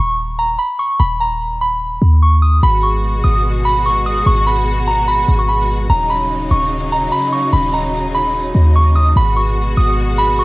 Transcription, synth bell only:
Already playing: C#6
0.39 A#5
0.58 B5
0.79 C#6
0.99 B5
1.20 A#5
1.61 B5
2.23 C#6
2.42 D#6
2.63 B5
2.83 C#6
3.24 D#6
3.65 B5
3.86 C#6
4.06 D#6
4.27 C#6
4.47 B5
4.87 A#5
5.08 B5
5.39 C#6
5.49 B5
5.90 A#5
6.10 B5
6.51 C#6
6.92 A#5
7.12 B5
7.32 C#6
7.53 B5
7.73 A#5
8.15 B5
8.76 C#6
8.96 D#6
9.17 B5
9.36 C#6
9.77 D#6
10.18 B5
10.39 C#6

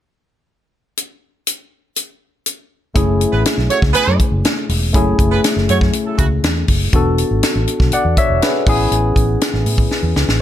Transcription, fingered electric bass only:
2.96 F#1
3.33 A1
3.58 B1
3.82 C#2
4.07 F#2
4.32 F#1
4.69 E1
4.95 F#1
5.19 F#1
5.56 F#1
5.69 F#2
6.19 C#2
6.43 E2
6.68 F#1
6.93 E1
7.31 G#1
7.55 A1
7.80 B1
7.92 muted fingered electric bass stroke
8.05 E2
8.30 E1
8.67 A1
8.91 A1
9.16 A1
9.54 A1
9.66 A2
10.03 E2
10.15 C#2
10.28 A1

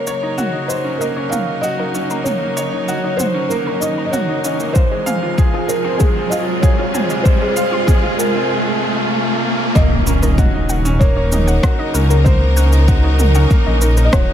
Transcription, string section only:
Already playing: C#3 F#4 A#4
0.01 F#3
0.23 D#4
4.76 C3
5.52 G#3
5.66 G#4
6.09 F4
9.76 C#3
10.18 F#3
11.04 A#4
11.13 D#4

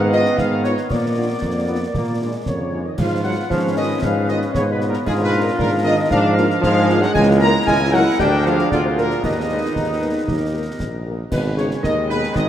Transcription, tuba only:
Already playing: G#2
0.38 G#2
0.90 A#2
1.42 F2
1.94 A#2
2.46 F2
2.98 G#2
3.51 G#2
4.02 G#2
4.54 G#2
5.06 G#2
5.59 G#2
6.10 G#2
6.63 G#2
7.15 C#2
7.67 C#2
8.19 D2
8.71 D2
9.23 D#2
9.75 D#2
10.27 D#2
10.79 A#1
11.31 G#1
11.83 D#2
12.35 G#1

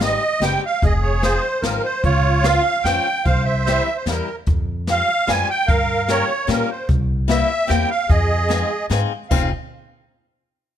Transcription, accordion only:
0.03 D#5
0.43 G5
0.66 F5
0.84 G#4 D#5
1.03 C#5
1.22 C5
1.62 A#4
1.84 C5
2.04 F4 C#5
2.44 F5
2.84 G5
3.24 C5 F5
3.45 E5
3.65 E5
3.96 C5
4.08 A#4
4.91 F5
5.29 G#5
5.50 G5
5.68 A#4 F5
6.10 C#5
6.49 A#4
6.70 C5
7.30 E5
7.68 G5
7.90 F5
8.10 G#4 D#5
9.29 F5

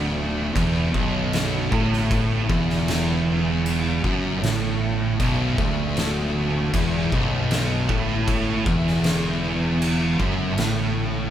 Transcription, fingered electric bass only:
Already playing: D1
0.56 E1
0.94 B0
1.72 A1
2.49 E1
4.04 F#1
4.43 A1
5.20 B0
5.58 D1
6.73 E1
7.12 B0
7.89 A1
8.66 E1
10.19 F#1
10.58 A1

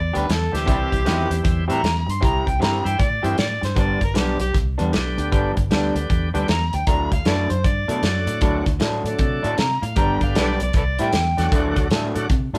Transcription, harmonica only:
Already playing: D5
0.17 B4
0.31 A4
0.55 G4
0.69 D4 E4 G4
1.71 A#5
2.11 C6
2.24 A#5
2.48 G5
2.62 A#5
2.87 G5
3.01 D5
3.24 G5
3.38 D5
3.65 C5
3.80 D5
4.04 A#4
4.17 G4
4.41 G4
6.50 A#5
6.75 G5
6.87 A#5
7.13 F5
7.27 A4 B4 D5
7.51 C5
7.66 D5
7.91 D5
9.60 A#5
9.84 F5
9.97 A#5
10.23 F5
10.38 A4 B4 D5
10.63 D5
10.76 A4 B4 D5
11.01 D5 E5 G5

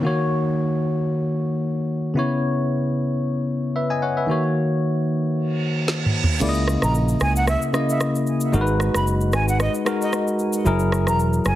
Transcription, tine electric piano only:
0.01 D#3 A#3 F#4
0.07 C#5
2.14 C#3 B3 E4
2.19 C#5
3.76 B4 E5
3.90 D#5 G#5
4.02 C#5 F#5
4.17 B4 E5
4.26 D#3 A#3 F#4
4.31 C#5
6.40 C#3 A#3 E4 D5
6.49 D#5
7.73 C#3 A#3 E4 D#5
8.52 G#3 D#4 F#4 A#4
8.61 B4
9.85 G#3 D#4 F#4 A#4
10.65 F#3 E4 G#4 A#4

